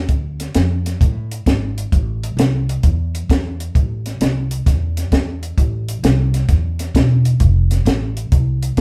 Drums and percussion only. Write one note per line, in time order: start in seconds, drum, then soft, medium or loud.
0.09 kick medium
0.09 closed hi-hat medium
0.40 snare soft
0.40 closed hi-hat medium
0.55 snare loud
0.55 closed hi-hat medium
0.86 snare soft
0.86 closed hi-hat medium
1.01 kick loud
1.01 closed hi-hat medium
1.32 closed hi-hat medium
1.46 kick medium
1.46 snare loud
1.46 closed hi-hat medium
1.78 closed hi-hat medium
1.92 kick medium
1.92 closed hi-hat medium
2.24 closed hi-hat medium
2.39 snare loud
2.39 closed hi-hat medium
2.69 closed hi-hat medium
2.83 kick medium
2.83 closed hi-hat medium
3.15 closed hi-hat medium
3.30 kick medium
3.30 snare loud
3.30 closed hi-hat medium
3.60 closed hi-hat medium
3.75 kick loud
3.75 closed hi-hat medium
4.06 snare soft
4.06 closed hi-hat medium
4.21 snare loud
4.21 closed hi-hat medium
4.51 closed hi-hat medium
4.66 kick loud
4.66 snare soft
4.66 closed hi-hat medium
4.97 snare soft
4.97 closed hi-hat medium
5.12 kick medium
5.12 snare loud
5.12 closed hi-hat medium
5.43 closed hi-hat medium
5.58 kick loud
5.58 closed hi-hat medium
5.89 closed hi-hat medium
6.04 snare loud
6.04 closed hi-hat medium
6.34 snare soft
6.34 closed hi-hat medium
6.49 kick loud
6.49 snare soft
6.49 closed hi-hat medium
6.79 snare soft
6.79 closed hi-hat medium
6.95 kick medium
6.95 snare loud
6.95 closed hi-hat medium
7.25 closed hi-hat medium
7.40 kick medium
7.40 closed hi-hat medium
7.71 snare soft
7.71 closed hi-hat medium
7.86 snare loud
7.86 closed hi-hat medium
8.17 closed hi-hat medium
8.32 kick loud
8.32 closed hi-hat medium
8.63 closed hi-hat medium
8.77 kick medium
8.77 closed hi-hat medium